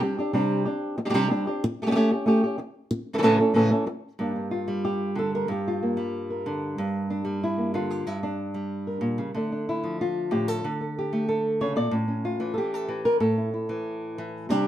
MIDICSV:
0, 0, Header, 1, 3, 480
1, 0, Start_track
1, 0, Tempo, 321716
1, 504, Time_signature, 4, 2, 24, 8
1, 21895, End_track
2, 0, Start_track
2, 0, Title_t, "Nylon-string guitar"
2, 0, Program_c, 0, 24
2, 20, Note_on_c, 0, 55, 59
2, 32, Note_on_c, 0, 62, 58
2, 36, Note_on_c, 0, 60, 59
2, 46, Note_on_c, 0, 67, 70
2, 253, Note_off_c, 0, 55, 0
2, 258, Note_off_c, 0, 67, 0
2, 259, Note_off_c, 0, 62, 0
2, 261, Note_off_c, 0, 60, 0
2, 276, Note_on_c, 0, 67, 53
2, 293, Note_on_c, 0, 62, 54
2, 310, Note_on_c, 0, 60, 40
2, 491, Note_off_c, 0, 60, 0
2, 496, Note_off_c, 0, 62, 0
2, 498, Note_on_c, 0, 48, 77
2, 499, Note_on_c, 0, 55, 80
2, 501, Note_off_c, 0, 67, 0
2, 509, Note_on_c, 0, 60, 89
2, 514, Note_on_c, 0, 62, 77
2, 530, Note_on_c, 0, 67, 80
2, 956, Note_off_c, 0, 67, 0
2, 972, Note_off_c, 0, 48, 0
2, 972, Note_off_c, 0, 55, 0
2, 974, Note_off_c, 0, 62, 0
2, 974, Note_on_c, 0, 67, 53
2, 977, Note_off_c, 0, 60, 0
2, 992, Note_on_c, 0, 62, 45
2, 998, Note_on_c, 0, 60, 44
2, 1444, Note_off_c, 0, 60, 0
2, 1449, Note_off_c, 0, 67, 0
2, 1451, Note_off_c, 0, 62, 0
2, 1571, Note_on_c, 0, 55, 47
2, 1571, Note_on_c, 0, 60, 46
2, 1576, Note_on_c, 0, 62, 55
2, 1582, Note_on_c, 0, 67, 59
2, 1617, Note_off_c, 0, 55, 0
2, 1628, Note_off_c, 0, 67, 0
2, 1630, Note_off_c, 0, 60, 0
2, 1630, Note_off_c, 0, 62, 0
2, 1635, Note_on_c, 0, 55, 74
2, 1646, Note_on_c, 0, 67, 78
2, 1647, Note_on_c, 0, 62, 73
2, 1648, Note_on_c, 0, 60, 66
2, 1683, Note_off_c, 0, 55, 0
2, 1692, Note_off_c, 0, 62, 0
2, 1694, Note_off_c, 0, 60, 0
2, 1701, Note_on_c, 0, 48, 81
2, 1701, Note_on_c, 0, 55, 87
2, 1703, Note_off_c, 0, 67, 0
2, 1710, Note_on_c, 0, 62, 83
2, 1712, Note_on_c, 0, 60, 81
2, 1721, Note_on_c, 0, 67, 90
2, 1921, Note_off_c, 0, 55, 0
2, 1933, Note_off_c, 0, 48, 0
2, 1933, Note_off_c, 0, 60, 0
2, 1937, Note_off_c, 0, 62, 0
2, 1939, Note_on_c, 0, 55, 56
2, 1943, Note_off_c, 0, 67, 0
2, 1950, Note_on_c, 0, 60, 65
2, 1957, Note_on_c, 0, 62, 71
2, 1964, Note_on_c, 0, 67, 61
2, 2172, Note_off_c, 0, 55, 0
2, 2177, Note_off_c, 0, 67, 0
2, 2178, Note_off_c, 0, 60, 0
2, 2181, Note_off_c, 0, 62, 0
2, 2195, Note_on_c, 0, 67, 59
2, 2214, Note_on_c, 0, 62, 51
2, 2217, Note_on_c, 0, 60, 45
2, 2420, Note_off_c, 0, 67, 0
2, 2429, Note_off_c, 0, 62, 0
2, 2431, Note_off_c, 0, 60, 0
2, 2715, Note_on_c, 0, 57, 50
2, 2728, Note_on_c, 0, 61, 52
2, 2731, Note_on_c, 0, 67, 56
2, 2764, Note_off_c, 0, 57, 0
2, 2772, Note_off_c, 0, 61, 0
2, 2782, Note_on_c, 0, 57, 66
2, 2786, Note_off_c, 0, 67, 0
2, 2790, Note_on_c, 0, 61, 59
2, 2804, Note_on_c, 0, 67, 70
2, 2836, Note_off_c, 0, 57, 0
2, 2848, Note_off_c, 0, 61, 0
2, 2850, Note_off_c, 0, 67, 0
2, 2854, Note_on_c, 0, 57, 75
2, 2866, Note_on_c, 0, 61, 71
2, 2867, Note_on_c, 0, 67, 81
2, 2898, Note_off_c, 0, 57, 0
2, 2908, Note_off_c, 0, 61, 0
2, 2916, Note_on_c, 0, 57, 82
2, 2918, Note_off_c, 0, 67, 0
2, 2926, Note_on_c, 0, 61, 85
2, 2936, Note_on_c, 0, 67, 81
2, 3134, Note_off_c, 0, 67, 0
2, 3140, Note_off_c, 0, 57, 0
2, 3145, Note_off_c, 0, 61, 0
2, 3152, Note_on_c, 0, 67, 59
2, 3370, Note_on_c, 0, 57, 85
2, 3378, Note_off_c, 0, 67, 0
2, 3390, Note_on_c, 0, 61, 85
2, 3398, Note_on_c, 0, 67, 103
2, 3607, Note_off_c, 0, 57, 0
2, 3616, Note_off_c, 0, 61, 0
2, 3616, Note_off_c, 0, 67, 0
2, 3633, Note_on_c, 0, 67, 59
2, 3663, Note_on_c, 0, 61, 41
2, 3840, Note_off_c, 0, 61, 0
2, 3850, Note_off_c, 0, 67, 0
2, 4676, Note_on_c, 0, 49, 52
2, 4682, Note_on_c, 0, 52, 52
2, 4690, Note_on_c, 0, 57, 52
2, 4692, Note_on_c, 0, 61, 52
2, 4697, Note_on_c, 0, 69, 60
2, 4729, Note_off_c, 0, 49, 0
2, 4735, Note_off_c, 0, 52, 0
2, 4737, Note_off_c, 0, 61, 0
2, 4744, Note_off_c, 0, 69, 0
2, 4745, Note_off_c, 0, 57, 0
2, 4747, Note_on_c, 0, 49, 58
2, 4753, Note_on_c, 0, 52, 70
2, 4755, Note_on_c, 0, 61, 66
2, 4762, Note_on_c, 0, 57, 69
2, 4762, Note_on_c, 0, 69, 77
2, 4794, Note_off_c, 0, 49, 0
2, 4804, Note_off_c, 0, 52, 0
2, 4807, Note_off_c, 0, 57, 0
2, 4812, Note_on_c, 0, 49, 78
2, 4814, Note_on_c, 0, 45, 80
2, 4816, Note_off_c, 0, 61, 0
2, 4816, Note_off_c, 0, 69, 0
2, 4822, Note_on_c, 0, 52, 84
2, 4825, Note_on_c, 0, 57, 81
2, 4834, Note_on_c, 0, 61, 81
2, 4834, Note_on_c, 0, 69, 89
2, 5032, Note_off_c, 0, 69, 0
2, 5047, Note_off_c, 0, 49, 0
2, 5048, Note_off_c, 0, 45, 0
2, 5050, Note_on_c, 0, 69, 56
2, 5052, Note_off_c, 0, 52, 0
2, 5053, Note_off_c, 0, 57, 0
2, 5054, Note_off_c, 0, 61, 0
2, 5072, Note_on_c, 0, 61, 54
2, 5074, Note_on_c, 0, 57, 51
2, 5082, Note_on_c, 0, 52, 49
2, 5278, Note_on_c, 0, 45, 83
2, 5285, Note_off_c, 0, 52, 0
2, 5286, Note_off_c, 0, 69, 0
2, 5289, Note_off_c, 0, 61, 0
2, 5289, Note_on_c, 0, 49, 78
2, 5291, Note_off_c, 0, 57, 0
2, 5303, Note_on_c, 0, 52, 83
2, 5307, Note_on_c, 0, 61, 82
2, 5309, Note_on_c, 0, 57, 84
2, 5315, Note_on_c, 0, 69, 87
2, 5516, Note_off_c, 0, 69, 0
2, 5519, Note_off_c, 0, 61, 0
2, 5520, Note_off_c, 0, 45, 0
2, 5522, Note_off_c, 0, 57, 0
2, 5525, Note_off_c, 0, 49, 0
2, 5532, Note_off_c, 0, 52, 0
2, 5534, Note_on_c, 0, 69, 52
2, 5537, Note_on_c, 0, 61, 57
2, 5540, Note_on_c, 0, 57, 45
2, 5560, Note_on_c, 0, 52, 45
2, 5751, Note_off_c, 0, 52, 0
2, 5754, Note_off_c, 0, 57, 0
2, 5755, Note_off_c, 0, 61, 0
2, 5760, Note_off_c, 0, 69, 0
2, 6249, Note_on_c, 0, 43, 69
2, 6257, Note_on_c, 0, 58, 45
2, 6273, Note_on_c, 0, 62, 44
2, 6280, Note_on_c, 0, 67, 44
2, 6495, Note_off_c, 0, 62, 0
2, 6501, Note_on_c, 0, 62, 43
2, 6725, Note_off_c, 0, 62, 0
2, 6731, Note_on_c, 0, 65, 71
2, 6978, Note_on_c, 0, 55, 52
2, 7225, Note_off_c, 0, 67, 0
2, 7231, Note_on_c, 0, 67, 79
2, 7691, Note_on_c, 0, 50, 58
2, 7696, Note_off_c, 0, 65, 0
2, 7706, Note_off_c, 0, 67, 0
2, 7740, Note_on_c, 0, 69, 83
2, 7960, Note_off_c, 0, 69, 0
2, 7980, Note_on_c, 0, 70, 86
2, 8147, Note_off_c, 0, 50, 0
2, 8173, Note_off_c, 0, 43, 0
2, 8179, Note_on_c, 0, 43, 72
2, 8201, Note_off_c, 0, 70, 0
2, 8226, Note_on_c, 0, 67, 73
2, 8468, Note_on_c, 0, 65, 68
2, 8513, Note_off_c, 0, 55, 0
2, 8684, Note_off_c, 0, 58, 0
2, 8690, Note_on_c, 0, 58, 47
2, 8907, Note_on_c, 0, 55, 55
2, 8924, Note_off_c, 0, 67, 0
2, 9404, Note_on_c, 0, 70, 43
2, 9638, Note_on_c, 0, 50, 64
2, 9646, Note_off_c, 0, 65, 0
2, 9654, Note_on_c, 0, 62, 49
2, 10082, Note_off_c, 0, 50, 0
2, 10115, Note_off_c, 0, 43, 0
2, 10121, Note_on_c, 0, 43, 78
2, 10592, Note_off_c, 0, 62, 0
2, 10598, Note_on_c, 0, 62, 82
2, 10805, Note_off_c, 0, 55, 0
2, 10811, Note_on_c, 0, 55, 56
2, 11071, Note_off_c, 0, 62, 0
2, 11092, Note_on_c, 0, 64, 84
2, 11137, Note_off_c, 0, 58, 0
2, 11137, Note_off_c, 0, 70, 0
2, 11300, Note_on_c, 0, 58, 37
2, 11548, Note_on_c, 0, 50, 67
2, 11559, Note_off_c, 0, 64, 0
2, 11565, Note_on_c, 0, 65, 89
2, 11793, Note_on_c, 0, 67, 91
2, 11990, Note_off_c, 0, 55, 0
2, 11995, Note_off_c, 0, 58, 0
2, 11998, Note_off_c, 0, 50, 0
2, 12005, Note_off_c, 0, 43, 0
2, 12035, Note_on_c, 0, 43, 67
2, 12041, Note_off_c, 0, 65, 0
2, 12041, Note_on_c, 0, 64, 92
2, 12272, Note_off_c, 0, 64, 0
2, 12279, Note_on_c, 0, 62, 74
2, 12510, Note_off_c, 0, 67, 0
2, 12747, Note_on_c, 0, 55, 53
2, 13235, Note_on_c, 0, 70, 39
2, 13435, Note_off_c, 0, 43, 0
2, 13441, Note_on_c, 0, 46, 63
2, 13695, Note_off_c, 0, 46, 0
2, 13697, Note_on_c, 0, 49, 57
2, 13715, Note_off_c, 0, 62, 0
2, 13920, Note_off_c, 0, 55, 0
2, 13924, Note_off_c, 0, 70, 0
2, 13936, Note_off_c, 0, 49, 0
2, 13942, Note_on_c, 0, 50, 63
2, 13953, Note_on_c, 0, 57, 45
2, 13965, Note_on_c, 0, 62, 46
2, 13983, Note_on_c, 0, 69, 49
2, 14197, Note_off_c, 0, 62, 0
2, 14203, Note_on_c, 0, 62, 43
2, 14450, Note_off_c, 0, 62, 0
2, 14456, Note_on_c, 0, 64, 79
2, 14674, Note_on_c, 0, 53, 47
2, 14923, Note_off_c, 0, 64, 0
2, 14936, Note_on_c, 0, 65, 94
2, 15383, Note_on_c, 0, 45, 69
2, 15387, Note_off_c, 0, 69, 0
2, 15393, Note_on_c, 0, 67, 90
2, 15637, Note_off_c, 0, 67, 0
2, 15637, Note_on_c, 0, 69, 82
2, 15839, Note_off_c, 0, 45, 0
2, 15839, Note_off_c, 0, 50, 0
2, 15844, Note_off_c, 0, 53, 0
2, 15881, Note_on_c, 0, 50, 67
2, 15884, Note_off_c, 0, 65, 0
2, 16108, Note_off_c, 0, 69, 0
2, 16126, Note_on_c, 0, 69, 45
2, 16384, Note_off_c, 0, 69, 0
2, 16390, Note_on_c, 0, 67, 76
2, 16601, Note_off_c, 0, 57, 0
2, 16601, Note_on_c, 0, 57, 52
2, 16831, Note_off_c, 0, 67, 0
2, 16837, Note_on_c, 0, 69, 94
2, 17320, Note_on_c, 0, 49, 58
2, 17324, Note_on_c, 0, 73, 88
2, 17540, Note_off_c, 0, 50, 0
2, 17546, Note_on_c, 0, 46, 52
2, 17549, Note_off_c, 0, 73, 0
2, 17555, Note_on_c, 0, 74, 95
2, 17556, Note_off_c, 0, 49, 0
2, 17769, Note_off_c, 0, 46, 0
2, 17775, Note_on_c, 0, 45, 66
2, 17793, Note_off_c, 0, 74, 0
2, 17793, Note_on_c, 0, 61, 49
2, 17795, Note_off_c, 0, 69, 0
2, 18015, Note_off_c, 0, 61, 0
2, 18021, Note_on_c, 0, 61, 48
2, 18274, Note_on_c, 0, 65, 90
2, 18492, Note_off_c, 0, 57, 0
2, 18498, Note_on_c, 0, 52, 55
2, 18693, Note_off_c, 0, 65, 0
2, 18706, Note_on_c, 0, 69, 66
2, 18765, Note_on_c, 0, 67, 93
2, 18987, Note_off_c, 0, 69, 0
2, 19005, Note_on_c, 0, 69, 91
2, 19207, Note_off_c, 0, 52, 0
2, 19225, Note_on_c, 0, 52, 61
2, 19467, Note_off_c, 0, 69, 0
2, 19473, Note_on_c, 0, 70, 99
2, 19478, Note_off_c, 0, 67, 0
2, 19674, Note_off_c, 0, 45, 0
2, 19676, Note_off_c, 0, 61, 0
2, 19679, Note_off_c, 0, 52, 0
2, 19696, Note_off_c, 0, 70, 0
2, 19700, Note_on_c, 0, 45, 73
2, 19702, Note_on_c, 0, 69, 84
2, 19957, Note_on_c, 0, 64, 41
2, 20177, Note_off_c, 0, 64, 0
2, 20195, Note_on_c, 0, 64, 48
2, 20428, Note_on_c, 0, 52, 55
2, 21143, Note_off_c, 0, 52, 0
2, 21161, Note_on_c, 0, 52, 68
2, 21594, Note_off_c, 0, 45, 0
2, 21601, Note_off_c, 0, 64, 0
2, 21605, Note_off_c, 0, 52, 0
2, 21620, Note_on_c, 0, 48, 85
2, 21621, Note_off_c, 0, 69, 0
2, 21635, Note_on_c, 0, 55, 78
2, 21639, Note_on_c, 0, 62, 86
2, 21641, Note_on_c, 0, 60, 89
2, 21652, Note_on_c, 0, 67, 86
2, 21895, Note_off_c, 0, 48, 0
2, 21895, Note_off_c, 0, 55, 0
2, 21895, Note_off_c, 0, 60, 0
2, 21895, Note_off_c, 0, 62, 0
2, 21895, Note_off_c, 0, 67, 0
2, 21895, End_track
3, 0, Start_track
3, 0, Title_t, "Muted nylon-string guitar strokes"
3, 1456, Note_on_c, 9, 29, 77
3, 1605, Note_off_c, 9, 29, 0
3, 2446, Note_on_c, 9, 29, 75
3, 2595, Note_off_c, 9, 29, 0
3, 3848, Note_on_c, 9, 29, 68
3, 3998, Note_off_c, 9, 29, 0
3, 4338, Note_on_c, 9, 29, 68
3, 4487, Note_off_c, 9, 29, 0
3, 5763, Note_on_c, 9, 29, 65
3, 5912, Note_off_c, 9, 29, 0
3, 21895, End_track
0, 0, End_of_file